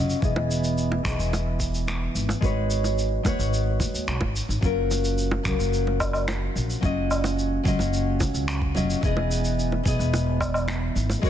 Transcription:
Already playing: upright bass F#1, nylon-string guitar F#3 C#4 F4 D#5
0.10 shaker
0.20 upright bass E1, nylon-string guitar E3 B3 G#4, kick, shaker
0.25 nylon-string guitar D#5
0.36 high bongo
0.51 shaker
0.64 shaker
0.78 shaker
0.92 high bongo
1.03 upright bass B1, nylon-string guitar E3 B3 G#4, finger snap, kick, shaker
1.08 nylon-string guitar D#5
1.19 upright bass E1, shaker
1.33 high bongo, shaker
1.60 kick, shaker
1.74 shaker
1.88 finger snap, high bongo, shaker
2.15 upright bass G#1, shaker
2.29 high bongo, shaker
2.40 upright bass G#1, nylon-string guitar G#3 F#4 B4, kick, shaker
2.45 nylon-string guitar C#5
2.71 shaker
2.84 high bongo, shaker
2.99 shaker
3.23 upright bass D#2, nylon-string guitar G#3 F#4 B4, kick, high bongo, shaker
3.28 nylon-string guitar C#5
3.39 upright bass G#1, shaker
3.54 shaker
3.80 upright bass D#2, kick, high bongo, shaker
3.94 upright bass D#2, shaker
4.08 upright bass B1, finger snap, shaker
4.21 upright bass G#1, kick, high bongo
4.36 shaker
4.49 upright bass G#1, shaker
4.61 upright bass F#1, nylon-string guitar F#3 C#4 F4, kick, shaker
4.65 nylon-string guitar A#4
4.91 high bongo, shaker
5.05 shaker
5.18 shaker
5.31 high bongo
5.43 upright bass C#2, nylon-string guitar F#3 C#4 F4, finger snap, kick, shaker
5.48 nylon-string guitar A#4
5.59 upright bass F#1, shaker
5.73 shaker
5.87 high bongo
6.00 kick, low woodblock, shaker
6.13 low woodblock, shaker
6.28 finger snap, high bongo, shaker
6.56 upright bass A#1, shaker
6.70 shaker
6.81 upright bass F#1, nylon-string guitar F#3 C#4 F4, kick, high bongo, shaker
6.85 nylon-string guitar D#5
7.11 low woodblock, shaker
7.24 high bongo, shaker
7.39 shaker
7.63 upright bass C#2, nylon-string guitar F#3 C#4 F4, kick, shaker
7.68 nylon-string guitar D#5
7.79 upright bass F#1, high bongo, shaker
7.93 shaker
8.20 upright bass C#2, kick, high bongo, shaker
8.34 upright bass C#2, shaker
8.48 finger snap, shaker
8.62 kick
8.75 upright bass F#1, nylon-string guitar F#3 C#4 F4 D#5, high bongo, shaker
8.90 shaker
9.01 upright bass E1, nylon-string guitar E3 B3 G#4, kick, shaker
9.06 nylon-string guitar D#5
9.17 high bongo
9.32 shaker
9.45 shaker
9.59 shaker
9.72 high bongo
9.83 upright bass B1, nylon-string guitar E3 B3 G#4, kick, shaker
9.88 nylon-string guitar D#5
9.99 upright bass E1, shaker
10.14 high bongo, shaker
10.41 kick, low woodblock, shaker
10.54 low woodblock, shaker
10.68 finger snap, high bongo, shaker
10.96 upright bass G#1, shaker
11.10 high bongo, shaker
11.21 upright bass G#1, nylon-string guitar G#3 F#4 A#4 B4, kick, shaker
11.26 nylon-string guitar C#5

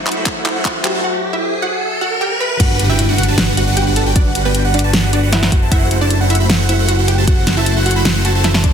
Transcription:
Already playing: analog synth bass F#1, synth keys F#3 F#4 A4 C5 E5, supersaw synth A3 E4 F#4 C5 F#5, analog synth pad A3 E4 F#4, riser
0.07 synth pluck E4 E5, clap, closed hi-hat
0.12 closed hi-hat
0.17 supersaw synth A3 E4 F#4 C5 B5
0.26 supersaw synth A3 F#4 C5 F#5, kick, clap, closed hi-hat
0.46 supersaw synth A3 E4 F#4 C5 F#5, synth pluck E4 E5, clap, closed hi-hat
0.56 supersaw synth A3 E4 F#4 C5 F#5
0.65 synth pluck F#4 F#5, kick, clap, closed hi-hat
0.75 supersaw synth A3 E4 F#4 C5 F#5
0.83 synth keys F#3 F#4 A4 C5 E5, synth pluck G4 G5, clap, closed hi-hat
0.95 supersaw synth A3 E4 F#4 C5 A5
1.04 synth pluck F#4 F#5
1.33 synth pluck E4 E5
1.62 synth pluck F#4 F#5
2.01 synth pluck F#4 F#5
2.21 synth pluck G4 G5
2.40 synth pluck B4 B5
2.60 analog synth bass G1, supersaw synth G3 D4 F#4 B4 F#5, synth pluck F#4 F#5, digital synth lead F#5, kick, closed hi-hat, crash, impact
2.79 supersaw synth G3 D4 F#4 B4 F#5, digital synth lead F#5, closed hi-hat
2.89 supersaw synth G3 D4 F#4 B4 G5, synth pluck E4 E5, digital synth lead G5
2.99 closed hi-hat
3.09 supersaw synth G3 D4 F#4 B4 F#5, digital synth lead F#5
3.18 synth pluck F#4 F#5, closed hi-hat
3.23 closed hi-hat
3.28 supersaw synth G3 D4 F#4 B4 A5, digital synth lead A5
3.38 supersaw synth G3 D4 F#4 B4 F#5, digital synth lead F#5, snare, closed hi-hat
3.57 supersaw synth G3 D4 F#4 B4 F#5, synth pluck F#4 F#5, digital synth lead F#5, closed hi-hat
3.67 supersaw synth G3 D4 F#4 B4 F#5, digital synth lead F#5
3.77 synth pluck G4 G5, closed hi-hat
3.87 supersaw synth G3 D4 F#4 B4 F#5, digital synth lead F#5
3.96 synth pluck A4 A5, closed hi-hat
4.06 supersaw synth G3 D4 F#4 B4 G5, digital synth lead G5
4.16 supersaw synth G3 D4 F#4 B4 F#5, synth pluck D4 D5, digital synth lead F#5, kick, closed hi-hat
4.35 supersaw synth G3 D4 F#4 B4 F#5, digital synth lead F#5, closed hi-hat
4.45 supersaw synth G3 D4 F#4 B4 G5, synth pluck B3 B4, digital synth lead G5
4.55 closed hi-hat
4.65 supersaw synth G3 D4 F#4 B4 F#5, digital synth lead F#5
4.74 synth pluck D4 D5, closed hi-hat
4.79 closed hi-hat
4.84 supersaw synth G3 D4 F#4 B4 A5, digital synth lead A5
4.93 supersaw synth G3 D4 F#4 B4 F#5, digital synth lead F#5, snare, closed hi-hat
5.13 supersaw synth G3 D4 F#4 B4 F#5, synth pluck D4 D5, digital synth lead F#5, closed hi-hat
5.23 supersaw synth G3 D4 F#4 B4 F#5, digital synth lead F#5
5.33 synth pluck E4 E5, snare, closed hi-hat
5.43 supersaw synth A3 E4 F#4 C5 F#5, digital synth lead F#5, snare
5.52 analog synth bass F#1, synth pluck F#4 F#5, kick, closed hi-hat
5.62 supersaw synth A3 E4 F#4 C5 A5, digital synth lead A5
5.72 supersaw synth A3 E4 F#4 C5 F#5, synth pluck E4 E5, digital synth lead F#5, kick, closed hi-hat
5.91 supersaw synth A3 E4 F#4 C5 F#5, digital synth lead F#5, closed hi-hat
6.01 supersaw synth A3 E4 F#4 C5 A5, synth pluck D4 D5, digital synth lead A5
6.10 closed hi-hat
6.21 supersaw synth A3 E4 F#4 C5 F#5, digital synth lead F#5
6.30 synth pluck E4 E5, closed hi-hat
6.35 closed hi-hat
6.40 supersaw synth A3 E4 F#4 C5 B5, digital synth lead B5
6.50 supersaw synth A3 E4 F#4 C5 F#5, digital synth lead F#5, snare, closed hi-hat
6.69 supersaw synth A3 E4 F#4 C5 F#5, synth pluck E4 E5, digital synth lead F#5, closed hi-hat
6.79 supersaw synth A3 E4 F#4 C5 F#5, digital synth lead F#5
6.88 synth pluck F#4 F#5, closed hi-hat
6.99 supersaw synth A3 E4 F#4 C5 F#5, digital synth lead F#5
7.08 synth pluck G4 G5, closed hi-hat
7.18 supersaw synth A3 E4 F#4 C5 A5, digital synth lead A5
7.27 synth pluck F#4 F#5, digital synth lead F#5, kick, closed hi-hat
7.47 supersaw synth A3 E4 F#4 C5 F#5, digital synth lead F#5, snare, closed hi-hat
7.57 supersaw synth A3 E4 F#4 C5 A5, synth pluck E4 E5, digital synth lead A5
7.66 closed hi-hat
7.77 supersaw synth A3 E4 F#4 C5 F#5, digital synth lead F#5
7.86 synth pluck F#4 F#5, closed hi-hat
7.91 closed hi-hat
7.96 supersaw synth A3 E4 F#4 C5 B5, digital synth lead B5
8.05 supersaw synth A3 E4 F#4 C5 F#5, digital synth lead F#5, snare, closed hi-hat
8.25 supersaw synth A3 E4 F#4 C5 A5, synth pluck F#4 F#5, digital synth lead A5, closed hi-hat
8.35 supersaw synth A3 E4 F#4 C5 A5, digital synth lead A5
8.44 synth pluck E4 E5, snare, closed hi-hat
8.54 supersaw synth A3 E4 F#4 C5 A5, digital synth lead A5, snare
8.64 supersaw synth A3 E4 F#4 C5 A5, synth pluck D4 D5, digital synth lead A5, kick, closed hi-hat

